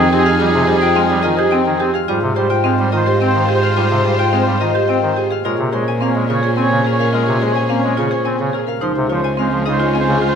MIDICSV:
0, 0, Header, 1, 7, 480
1, 0, Start_track
1, 0, Tempo, 560748
1, 343, Time_signature, 3, 2, 24, 8
1, 8861, End_track
2, 0, Start_track
2, 0, Title_t, "Harp"
2, 0, Program_c, 0, 46
2, 0, Note_on_c, 0, 68, 95
2, 0, Note_on_c, 0, 72, 76
2, 0, Note_on_c, 0, 75, 93
2, 0, Note_on_c, 0, 77, 78
2, 0, Note_on_c, 0, 79, 74
2, 0, Note_on_c, 0, 80, 86
2, 96, Note_off_c, 0, 68, 0
2, 106, Note_on_c, 0, 68, 66
2, 208, Note_off_c, 0, 77, 0
2, 218, Note_on_c, 0, 77, 82
2, 326, Note_off_c, 0, 68, 0
2, 336, Note_on_c, 0, 68, 85
2, 564, Note_off_c, 0, 72, 0
2, 574, Note_on_c, 0, 72, 72
2, 683, Note_off_c, 0, 79, 0
2, 694, Note_on_c, 0, 79, 87
2, 803, Note_off_c, 0, 77, 0
2, 814, Note_on_c, 0, 77, 78
2, 1038, Note_off_c, 0, 75, 0
2, 1048, Note_on_c, 0, 75, 93
2, 1159, Note_off_c, 0, 72, 0
2, 1169, Note_on_c, 0, 72, 66
2, 1278, Note_off_c, 0, 79, 0
2, 1288, Note_on_c, 0, 79, 75
2, 1526, Note_off_c, 0, 68, 0
2, 1536, Note_on_c, 0, 68, 66
2, 1656, Note_off_c, 0, 77, 0
2, 1666, Note_on_c, 0, 77, 79
2, 1767, Note_off_c, 0, 80, 0
2, 1771, Note_off_c, 0, 68, 0
2, 1782, Note_on_c, 0, 68, 89
2, 1795, Note_off_c, 0, 79, 0
2, 2009, Note_off_c, 0, 72, 0
2, 2020, Note_on_c, 0, 72, 73
2, 2138, Note_on_c, 0, 79, 85
2, 2252, Note_off_c, 0, 77, 0
2, 2262, Note_on_c, 0, 77, 68
2, 2490, Note_off_c, 0, 75, 0
2, 2501, Note_on_c, 0, 75, 81
2, 2620, Note_off_c, 0, 72, 0
2, 2630, Note_on_c, 0, 72, 69
2, 2740, Note_off_c, 0, 79, 0
2, 2750, Note_on_c, 0, 79, 68
2, 2971, Note_off_c, 0, 68, 0
2, 2981, Note_on_c, 0, 68, 59
2, 3098, Note_off_c, 0, 77, 0
2, 3108, Note_on_c, 0, 77, 70
2, 3211, Note_off_c, 0, 68, 0
2, 3222, Note_on_c, 0, 68, 78
2, 3456, Note_off_c, 0, 72, 0
2, 3466, Note_on_c, 0, 72, 60
2, 3574, Note_off_c, 0, 79, 0
2, 3584, Note_on_c, 0, 79, 77
2, 3691, Note_off_c, 0, 77, 0
2, 3702, Note_on_c, 0, 77, 63
2, 3933, Note_off_c, 0, 75, 0
2, 3943, Note_on_c, 0, 75, 79
2, 4051, Note_off_c, 0, 72, 0
2, 4061, Note_on_c, 0, 72, 64
2, 4176, Note_off_c, 0, 79, 0
2, 4187, Note_on_c, 0, 79, 65
2, 4415, Note_off_c, 0, 68, 0
2, 4425, Note_on_c, 0, 68, 58
2, 4540, Note_off_c, 0, 77, 0
2, 4550, Note_on_c, 0, 77, 66
2, 4666, Note_on_c, 0, 70, 82
2, 4681, Note_off_c, 0, 72, 0
2, 4682, Note_off_c, 0, 75, 0
2, 4684, Note_off_c, 0, 79, 0
2, 4902, Note_on_c, 0, 72, 64
2, 5031, Note_on_c, 0, 80, 70
2, 5140, Note_off_c, 0, 77, 0
2, 5150, Note_on_c, 0, 77, 64
2, 5391, Note_on_c, 0, 73, 78
2, 5500, Note_off_c, 0, 72, 0
2, 5510, Note_on_c, 0, 72, 63
2, 5622, Note_off_c, 0, 80, 0
2, 5632, Note_on_c, 0, 80, 61
2, 5865, Note_off_c, 0, 70, 0
2, 5876, Note_on_c, 0, 70, 60
2, 5981, Note_off_c, 0, 77, 0
2, 5991, Note_on_c, 0, 77, 70
2, 6103, Note_off_c, 0, 70, 0
2, 6113, Note_on_c, 0, 70, 73
2, 6341, Note_off_c, 0, 72, 0
2, 6351, Note_on_c, 0, 72, 66
2, 6456, Note_off_c, 0, 80, 0
2, 6466, Note_on_c, 0, 80, 70
2, 6576, Note_off_c, 0, 77, 0
2, 6586, Note_on_c, 0, 77, 67
2, 6814, Note_off_c, 0, 73, 0
2, 6824, Note_on_c, 0, 73, 79
2, 6937, Note_off_c, 0, 72, 0
2, 6947, Note_on_c, 0, 72, 60
2, 7054, Note_off_c, 0, 80, 0
2, 7064, Note_on_c, 0, 80, 64
2, 7301, Note_off_c, 0, 70, 0
2, 7311, Note_on_c, 0, 70, 61
2, 7419, Note_off_c, 0, 77, 0
2, 7429, Note_on_c, 0, 77, 70
2, 7535, Note_off_c, 0, 72, 0
2, 7545, Note_on_c, 0, 72, 74
2, 7566, Note_off_c, 0, 70, 0
2, 7764, Note_off_c, 0, 68, 0
2, 7775, Note_off_c, 0, 73, 0
2, 7785, Note_on_c, 0, 73, 63
2, 7899, Note_off_c, 0, 80, 0
2, 7909, Note_on_c, 0, 80, 76
2, 8024, Note_off_c, 0, 77, 0
2, 8034, Note_on_c, 0, 77, 65
2, 8266, Note_on_c, 0, 75, 79
2, 8382, Note_off_c, 0, 73, 0
2, 8392, Note_on_c, 0, 73, 63
2, 8503, Note_off_c, 0, 80, 0
2, 8513, Note_on_c, 0, 80, 64
2, 8741, Note_off_c, 0, 72, 0
2, 8751, Note_on_c, 0, 72, 62
2, 8857, Note_off_c, 0, 77, 0
2, 8861, Note_off_c, 0, 72, 0
2, 8861, Note_off_c, 0, 73, 0
2, 8861, Note_off_c, 0, 75, 0
2, 8861, Note_off_c, 0, 80, 0
2, 8861, End_track
3, 0, Start_track
3, 0, Title_t, "Oboe"
3, 0, Program_c, 1, 68
3, 145, Note_on_c, 1, 68, 82
3, 325, Note_off_c, 1, 68, 0
3, 399, Note_on_c, 1, 68, 74
3, 578, Note_off_c, 1, 68, 0
3, 660, Note_on_c, 1, 68, 77
3, 835, Note_off_c, 1, 68, 0
3, 917, Note_on_c, 1, 68, 64
3, 1090, Note_off_c, 1, 68, 0
3, 1163, Note_on_c, 1, 68, 61
3, 1338, Note_off_c, 1, 68, 0
3, 1419, Note_on_c, 1, 68, 45
3, 1592, Note_off_c, 1, 68, 0
3, 1787, Note_on_c, 1, 72, 40
3, 1961, Note_off_c, 1, 72, 0
3, 2041, Note_on_c, 1, 72, 51
3, 2214, Note_off_c, 1, 72, 0
3, 2289, Note_on_c, 1, 72, 53
3, 2463, Note_off_c, 1, 72, 0
3, 2536, Note_on_c, 1, 72, 72
3, 2711, Note_off_c, 1, 72, 0
3, 2794, Note_on_c, 1, 72, 76
3, 2967, Note_off_c, 1, 72, 0
3, 3040, Note_on_c, 1, 72, 75
3, 3215, Note_off_c, 1, 72, 0
3, 3291, Note_on_c, 1, 72, 65
3, 3466, Note_off_c, 1, 72, 0
3, 3536, Note_on_c, 1, 72, 60
3, 3713, Note_off_c, 1, 72, 0
3, 3787, Note_on_c, 1, 72, 53
3, 3964, Note_off_c, 1, 72, 0
3, 4045, Note_on_c, 1, 72, 54
3, 4219, Note_off_c, 1, 72, 0
3, 4302, Note_on_c, 1, 72, 39
3, 4474, Note_off_c, 1, 72, 0
3, 4675, Note_on_c, 1, 73, 35
3, 4846, Note_off_c, 1, 73, 0
3, 4910, Note_on_c, 1, 73, 48
3, 5087, Note_off_c, 1, 73, 0
3, 5168, Note_on_c, 1, 73, 53
3, 5343, Note_off_c, 1, 73, 0
3, 5423, Note_on_c, 1, 73, 75
3, 5596, Note_off_c, 1, 73, 0
3, 5666, Note_on_c, 1, 73, 81
3, 5842, Note_off_c, 1, 73, 0
3, 5924, Note_on_c, 1, 73, 74
3, 6097, Note_off_c, 1, 73, 0
3, 6182, Note_on_c, 1, 73, 68
3, 6353, Note_off_c, 1, 73, 0
3, 6431, Note_on_c, 1, 73, 67
3, 6602, Note_off_c, 1, 73, 0
3, 6674, Note_on_c, 1, 73, 55
3, 6849, Note_off_c, 1, 73, 0
3, 6935, Note_on_c, 1, 73, 53
3, 7106, Note_off_c, 1, 73, 0
3, 7194, Note_on_c, 1, 73, 41
3, 7362, Note_off_c, 1, 73, 0
3, 7555, Note_on_c, 1, 72, 35
3, 7727, Note_off_c, 1, 72, 0
3, 7808, Note_on_c, 1, 72, 46
3, 7978, Note_off_c, 1, 72, 0
3, 8056, Note_on_c, 1, 72, 53
3, 8228, Note_off_c, 1, 72, 0
3, 8318, Note_on_c, 1, 72, 75
3, 8486, Note_off_c, 1, 72, 0
3, 8555, Note_on_c, 1, 72, 75
3, 8728, Note_off_c, 1, 72, 0
3, 8804, Note_on_c, 1, 72, 74
3, 8861, Note_off_c, 1, 72, 0
3, 8861, End_track
4, 0, Start_track
4, 0, Title_t, "Violin section"
4, 0, Program_c, 2, 48
4, 0, Note_on_c, 2, 63, 78
4, 0, Note_on_c, 2, 68, 81
4, 1627, Note_off_c, 2, 68, 0
4, 1628, Note_off_c, 2, 63, 0
4, 1799, Note_on_c, 2, 65, 77
4, 1800, Note_on_c, 2, 72, 72
4, 4516, Note_off_c, 2, 65, 0
4, 4517, Note_off_c, 2, 72, 0
4, 4663, Note_on_c, 2, 61, 68
4, 4664, Note_on_c, 2, 68, 70
4, 7389, Note_off_c, 2, 61, 0
4, 7389, Note_off_c, 2, 68, 0
4, 7548, Note_on_c, 2, 68, 66
4, 7549, Note_on_c, 2, 65, 67
4, 8861, Note_off_c, 2, 65, 0
4, 8861, Note_off_c, 2, 68, 0
4, 8861, End_track
5, 0, Start_track
5, 0, Title_t, "Marimba"
5, 0, Program_c, 3, 12
5, 109, Note_on_c, 3, 67, 81
5, 225, Note_on_c, 3, 68, 72
5, 261, Note_off_c, 3, 67, 0
5, 348, Note_on_c, 3, 65, 77
5, 379, Note_off_c, 3, 68, 0
5, 501, Note_off_c, 3, 65, 0
5, 586, Note_on_c, 3, 67, 73
5, 705, Note_on_c, 3, 65, 70
5, 740, Note_off_c, 3, 67, 0
5, 824, Note_on_c, 3, 60, 89
5, 860, Note_off_c, 3, 65, 0
5, 979, Note_off_c, 3, 60, 0
5, 1065, Note_on_c, 3, 65, 70
5, 1188, Note_on_c, 3, 67, 90
5, 1220, Note_off_c, 3, 65, 0
5, 1304, Note_on_c, 3, 60, 79
5, 1340, Note_off_c, 3, 67, 0
5, 1459, Note_off_c, 3, 60, 0
5, 1542, Note_on_c, 3, 67, 76
5, 1659, Note_on_c, 3, 68, 69
5, 1699, Note_off_c, 3, 67, 0
5, 1783, Note_on_c, 3, 65, 70
5, 1818, Note_off_c, 3, 68, 0
5, 1939, Note_off_c, 3, 65, 0
5, 2023, Note_on_c, 3, 67, 67
5, 2142, Note_on_c, 3, 65, 70
5, 2179, Note_off_c, 3, 67, 0
5, 2259, Note_on_c, 3, 60, 89
5, 2298, Note_off_c, 3, 65, 0
5, 2418, Note_off_c, 3, 60, 0
5, 2504, Note_on_c, 3, 65, 68
5, 2624, Note_on_c, 3, 67, 80
5, 2659, Note_off_c, 3, 65, 0
5, 2746, Note_on_c, 3, 60, 68
5, 2779, Note_off_c, 3, 67, 0
5, 2900, Note_off_c, 3, 60, 0
5, 2984, Note_on_c, 3, 67, 78
5, 3105, Note_on_c, 3, 68, 62
5, 3139, Note_off_c, 3, 67, 0
5, 3224, Note_on_c, 3, 65, 64
5, 3260, Note_off_c, 3, 68, 0
5, 3379, Note_off_c, 3, 65, 0
5, 3465, Note_on_c, 3, 67, 64
5, 3588, Note_on_c, 3, 65, 62
5, 3620, Note_off_c, 3, 67, 0
5, 3705, Note_on_c, 3, 60, 79
5, 3741, Note_off_c, 3, 65, 0
5, 3860, Note_off_c, 3, 60, 0
5, 3944, Note_on_c, 3, 65, 61
5, 4066, Note_on_c, 3, 67, 76
5, 4099, Note_off_c, 3, 65, 0
5, 4185, Note_on_c, 3, 60, 62
5, 4220, Note_off_c, 3, 67, 0
5, 4339, Note_off_c, 3, 60, 0
5, 4421, Note_on_c, 3, 67, 67
5, 4542, Note_on_c, 3, 68, 61
5, 4578, Note_off_c, 3, 67, 0
5, 4665, Note_on_c, 3, 65, 68
5, 4699, Note_off_c, 3, 68, 0
5, 4819, Note_off_c, 3, 65, 0
5, 4903, Note_on_c, 3, 68, 63
5, 5059, Note_off_c, 3, 68, 0
5, 5142, Note_on_c, 3, 60, 80
5, 5299, Note_off_c, 3, 60, 0
5, 5384, Note_on_c, 3, 65, 60
5, 5503, Note_on_c, 3, 68, 78
5, 5539, Note_off_c, 3, 65, 0
5, 5625, Note_on_c, 3, 60, 70
5, 5659, Note_off_c, 3, 68, 0
5, 5780, Note_off_c, 3, 60, 0
5, 5860, Note_on_c, 3, 68, 69
5, 5984, Note_on_c, 3, 70, 62
5, 6018, Note_off_c, 3, 68, 0
5, 6101, Note_on_c, 3, 65, 63
5, 6139, Note_off_c, 3, 70, 0
5, 6258, Note_off_c, 3, 65, 0
5, 6347, Note_on_c, 3, 68, 64
5, 6500, Note_off_c, 3, 68, 0
5, 6583, Note_on_c, 3, 60, 78
5, 6739, Note_off_c, 3, 60, 0
5, 6824, Note_on_c, 3, 65, 62
5, 6942, Note_on_c, 3, 68, 80
5, 6979, Note_off_c, 3, 65, 0
5, 7061, Note_on_c, 3, 60, 61
5, 7098, Note_off_c, 3, 68, 0
5, 7218, Note_off_c, 3, 60, 0
5, 7303, Note_on_c, 3, 68, 70
5, 7421, Note_on_c, 3, 70, 58
5, 7459, Note_off_c, 3, 68, 0
5, 7544, Note_on_c, 3, 63, 66
5, 7578, Note_off_c, 3, 70, 0
5, 7699, Note_off_c, 3, 63, 0
5, 7784, Note_on_c, 3, 65, 63
5, 7939, Note_off_c, 3, 65, 0
5, 8023, Note_on_c, 3, 60, 81
5, 8179, Note_off_c, 3, 60, 0
5, 8265, Note_on_c, 3, 63, 60
5, 8385, Note_on_c, 3, 65, 78
5, 8420, Note_off_c, 3, 63, 0
5, 8505, Note_on_c, 3, 60, 66
5, 8539, Note_off_c, 3, 65, 0
5, 8660, Note_off_c, 3, 60, 0
5, 8745, Note_on_c, 3, 65, 78
5, 8861, Note_off_c, 3, 65, 0
5, 8861, End_track
6, 0, Start_track
6, 0, Title_t, "Pipe organ"
6, 0, Program_c, 4, 19
6, 107, Note_on_c, 4, 60, 79
6, 195, Note_off_c, 4, 60, 0
6, 347, Note_on_c, 4, 55, 93
6, 435, Note_off_c, 4, 55, 0
6, 460, Note_on_c, 4, 48, 80
6, 551, Note_off_c, 4, 48, 0
6, 577, Note_on_c, 4, 55, 71
6, 669, Note_off_c, 4, 55, 0
6, 824, Note_on_c, 4, 56, 75
6, 914, Note_off_c, 4, 56, 0
6, 946, Note_on_c, 4, 55, 73
6, 1035, Note_off_c, 4, 55, 0
6, 1063, Note_on_c, 4, 51, 94
6, 1153, Note_off_c, 4, 51, 0
6, 1302, Note_on_c, 4, 60, 73
6, 1393, Note_off_c, 4, 60, 0
6, 1421, Note_on_c, 4, 51, 90
6, 1512, Note_off_c, 4, 51, 0
6, 1541, Note_on_c, 4, 60, 74
6, 1632, Note_off_c, 4, 60, 0
6, 1785, Note_on_c, 4, 55, 85
6, 1874, Note_off_c, 4, 55, 0
6, 1899, Note_on_c, 4, 48, 77
6, 1991, Note_off_c, 4, 48, 0
6, 2029, Note_on_c, 4, 55, 61
6, 2116, Note_off_c, 4, 55, 0
6, 2264, Note_on_c, 4, 56, 71
6, 2354, Note_off_c, 4, 56, 0
6, 2388, Note_on_c, 4, 55, 69
6, 2476, Note_off_c, 4, 55, 0
6, 2502, Note_on_c, 4, 51, 85
6, 2592, Note_off_c, 4, 51, 0
6, 2745, Note_on_c, 4, 60, 65
6, 2834, Note_off_c, 4, 60, 0
6, 2862, Note_on_c, 4, 51, 78
6, 2952, Note_off_c, 4, 51, 0
6, 3222, Note_on_c, 4, 55, 79
6, 3312, Note_off_c, 4, 55, 0
6, 3338, Note_on_c, 4, 48, 67
6, 3430, Note_off_c, 4, 48, 0
6, 3461, Note_on_c, 4, 55, 60
6, 3552, Note_off_c, 4, 55, 0
6, 3697, Note_on_c, 4, 56, 63
6, 3789, Note_off_c, 4, 56, 0
6, 3821, Note_on_c, 4, 55, 60
6, 3911, Note_off_c, 4, 55, 0
6, 3942, Note_on_c, 4, 51, 75
6, 4032, Note_off_c, 4, 51, 0
6, 4181, Note_on_c, 4, 60, 58
6, 4271, Note_off_c, 4, 60, 0
6, 4301, Note_on_c, 4, 51, 75
6, 4392, Note_off_c, 4, 51, 0
6, 4663, Note_on_c, 4, 56, 82
6, 4753, Note_off_c, 4, 56, 0
6, 4778, Note_on_c, 4, 48, 67
6, 4870, Note_off_c, 4, 48, 0
6, 4906, Note_on_c, 4, 56, 60
6, 4995, Note_off_c, 4, 56, 0
6, 5147, Note_on_c, 4, 58, 65
6, 5235, Note_off_c, 4, 58, 0
6, 5267, Note_on_c, 4, 56, 64
6, 5355, Note_off_c, 4, 56, 0
6, 5382, Note_on_c, 4, 49, 75
6, 5472, Note_off_c, 4, 49, 0
6, 5620, Note_on_c, 4, 60, 61
6, 5711, Note_off_c, 4, 60, 0
6, 5739, Note_on_c, 4, 49, 83
6, 5831, Note_off_c, 4, 49, 0
6, 6104, Note_on_c, 4, 56, 84
6, 6193, Note_off_c, 4, 56, 0
6, 6224, Note_on_c, 4, 48, 65
6, 6314, Note_off_c, 4, 48, 0
6, 6343, Note_on_c, 4, 56, 60
6, 6433, Note_off_c, 4, 56, 0
6, 6587, Note_on_c, 4, 58, 62
6, 6675, Note_off_c, 4, 58, 0
6, 6709, Note_on_c, 4, 56, 62
6, 6797, Note_off_c, 4, 56, 0
6, 6827, Note_on_c, 4, 49, 75
6, 6916, Note_off_c, 4, 49, 0
6, 7067, Note_on_c, 4, 60, 60
6, 7156, Note_off_c, 4, 60, 0
6, 7188, Note_on_c, 4, 49, 81
6, 7276, Note_off_c, 4, 49, 0
6, 7545, Note_on_c, 4, 53, 77
6, 7634, Note_off_c, 4, 53, 0
6, 7675, Note_on_c, 4, 48, 66
6, 7760, Note_off_c, 4, 48, 0
6, 7792, Note_on_c, 4, 53, 64
6, 7879, Note_off_c, 4, 53, 0
6, 8037, Note_on_c, 4, 56, 68
6, 8122, Note_off_c, 4, 56, 0
6, 8152, Note_on_c, 4, 53, 64
6, 8238, Note_off_c, 4, 53, 0
6, 8274, Note_on_c, 4, 49, 73
6, 8360, Note_off_c, 4, 49, 0
6, 8628, Note_on_c, 4, 49, 85
6, 8716, Note_off_c, 4, 49, 0
6, 8861, End_track
7, 0, Start_track
7, 0, Title_t, "Cello"
7, 0, Program_c, 5, 42
7, 0, Note_on_c, 5, 41, 91
7, 1650, Note_off_c, 5, 41, 0
7, 1780, Note_on_c, 5, 44, 78
7, 4531, Note_off_c, 5, 44, 0
7, 4659, Note_on_c, 5, 46, 78
7, 7411, Note_off_c, 5, 46, 0
7, 7540, Note_on_c, 5, 37, 73
7, 8861, Note_off_c, 5, 37, 0
7, 8861, End_track
0, 0, End_of_file